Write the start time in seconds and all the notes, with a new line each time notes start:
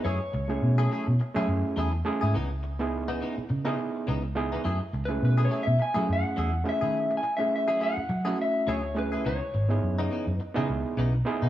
0.04 F#2 F#3 A3 E4 G#4 C#5
0.20 muted clean electric guitar stroke
0.33 C#2, muted clean electric guitar stroke
0.48 A3 C#4 E4 G#4, muted clean electric guitar stroke
0.62 B2
0.78 F#3 A3 E4 G#4
0.91 F#3 A3 E4 G#4
1.07 B2, muted clean electric guitar stroke
1.20 muted clean electric guitar stroke
1.34 F#3 A3 C#4 E4 G#4
1.48 F#2, muted clean electric guitar stroke
1.76 E2 F#3 A3 E4 G#4
1.93 muted clean electric guitar stroke
2.05 A3 C#4 E4 G#4, muted clean electric guitar stroke
2.21 G#2 A3 E4 G#4
2.34 C#2 C#3 E3 B3 D#4
2.50 muted clean electric guitar stroke
2.63 muted clean electric guitar stroke
2.79 B3 D#4 E4 G#4, muted clean electric guitar stroke
3.08 C#3 E3 B3 D#4
3.21 C#3 E3 B3 D#4
3.37 muted clean electric guitar stroke, muted fingered electric bass stroke
3.49 C#3, muted clean electric guitar stroke
3.65 C#3 E3 B3 D#4 E4 G#4
3.79 muted clean electric guitar stroke
4.07 C#2 C#3 E3 B3 D#4
4.24 muted clean electric guitar stroke
4.35 B3 D#4 E4 G#4, muted clean electric guitar stroke
4.52 E3 B3 D#4
4.64 F#2 F#3 A3 E4 G#4
4.80 muted clean electric guitar stroke
4.93 C#2, muted clean electric guitar stroke
5.05 A3 C#4 B4, muted clean electric guitar stroke
5.10 E4 G#4
5.22 B2 B4
5.38 F#3 A3 E4 G#4
5.45 C#5
5.50 F#3 A3 E4 G#4
5.63 B2 E5, muted clean electric guitar stroke
5.79 G#5, muted clean electric guitar stroke
5.94 F#3 A3 C#4 E4 G#4
6.08 F#2, muted clean electric guitar stroke
6.13 F#5
6.36 E2 F#3 A3 E4 G#4
6.53 muted clean electric guitar stroke
6.64 A3 C#4 E4 G#4, muted clean electric guitar stroke
6.69 E5
6.81 D#3 A3 E4 G#4
7.11 muted clean electric guitar stroke
7.17 G#5
7.23 muted clean electric guitar stroke
7.37 A3 C#4 E4 G#4 E5, muted clean electric guitar stroke
7.56 E5
7.68 F#3 A3 E4 G#4
7.79 F#3 A3 E4 G#4
7.83 F#5
7.96 muted clean electric guitar stroke, muted fingered electric bass stroke
8.09 F#3, muted clean electric guitar stroke
8.25 F#3 A3 C#4 E4 F#4 G#4
8.38 E5, muted clean electric guitar stroke
8.67 D2 F#3 A3 E4 G#4 C#5
8.83 muted clean electric guitar stroke
8.95 A3 C#4 E4 G#4 B4, muted clean electric guitar stroke
9.12 A3 E4 G#4
9.25 C#2 C#3 E3 B3 D#4 C#5
9.41 muted clean electric guitar stroke
9.54 G#1, muted clean electric guitar stroke
9.69 B3 D#4 E4 G#4, muted clean electric guitar stroke
9.83 F#2
9.99 C#3 E3 B3 D#4
10.11 C#3 E3 B3 D#4
10.27 F#2, muted clean electric guitar stroke
10.37 B4, muted clean electric guitar stroke
10.54 C#3 E3 B3 D#4 E4 G#4
10.69 C#2
10.97 B1 C#3 E3 B3 D#4
11.14 muted clean electric guitar stroke
11.25 B3 D#4 E4 G#4, muted clean electric guitar stroke
11.42 B2 E3 B3 D#4